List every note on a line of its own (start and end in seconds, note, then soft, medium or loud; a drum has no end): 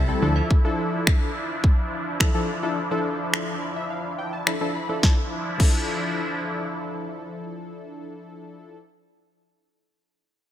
0.00 0.12 C2 medium
0.00 0.18 C3 medium
0.00 0.18 A3 medium
0.00 4.99 E4 medium
0.08 0.22 G3 medium
0.08 0.22 C4 medium
0.08 0.21 E4 medium
0.08 0.21 A4 loud
0.08 muted clean electric guitar stroke soft
0.22 0.40 D2 loud
0.22 0.56 F3 medium
0.22 4.99 F3 medium
0.22 0.56 D4 medium
0.22 4.99 D4 medium
0.22 0.56 E4 medium
0.22 0.56 A4 loud
0.22 muted clean electric guitar stroke soft
0.36 0.49 F4 soft
0.36 0.49 A4 soft
0.36 0.48 E5 medium
0.51 kick loud
0.64 1.30 F3 medium
0.64 1.30 D4 medium
0.64 1.30 E4 medium
0.64 1.30 A4 loud
1.07 finger snap loud
1.07 kick loud
1.64 kick loud
2.20 2.28 F3 medium
2.20 2.28 D4 medium
2.20 2.29 E4 medium
2.20 2.29 A4 loud
2.20 finger snap loud
2.20 kick loud
2.34 2.51 F3 medium
2.34 2.51 D4 medium
2.34 2.51 E4 medium
2.34 2.51 A4 medium
2.63 2.79 F3 medium
2.63 2.79 D4 medium
2.63 2.79 E4 medium
2.63 2.79 A4 medium
2.91 3.56 F3 medium
2.91 3.56 D4 medium
2.91 3.56 E4 medium
2.91 3.57 A4 loud
3.34 finger snap loud
3.62 3.75 D5 medium
3.76 3.89 E5 medium
3.90 4.17 F5 medium
4.19 4.32 G5 medium
4.33 4.46 A5 medium
4.47 4.55 F3 medium
4.47 4.55 D4 medium
4.47 4.55 E4 medium
4.47 4.55 A4 medium
4.47 4.73 B5 medium
4.47 finger snap loud
4.61 4.77 F3 medium
4.61 4.77 D4 medium
4.61 4.77 E4 medium
4.61 4.77 A4 medium
4.75 5.01 B5 medium
4.89 5.00 F3 medium
4.89 5.02 D4 medium
4.89 5.03 E4 medium
4.89 5.03 A4 medium
5.01 5.18 F3 medium
5.01 8.06 F3 medium
5.01 5.19 D4 medium
5.01 8.06 D4 medium
5.01 8.06 E4 medium
5.01 5.20 E4 medium
5.01 5.20 A4 medium
5.01 kick loud
5.01 snare medium
5.58 8.75 F3 medium
5.58 8.75 D4 medium
5.58 8.76 E4 medium
5.58 8.77 A4 medium
5.58 kick loud
5.58 crash medium